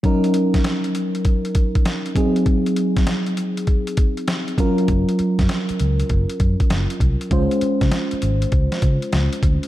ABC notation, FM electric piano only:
X:1
M:4/4
L:1/8
Q:"Swing 16ths" 1/4=99
K:Ebdor
V:1 name="FM electric piano"
[G,DEB]6- [G,DEB] [G,CEA]- | [G,CEA]6- [G,CEA] [G,DFB]- | [G,DFB]6- [G,DFB] z | [A,DFc]8 |]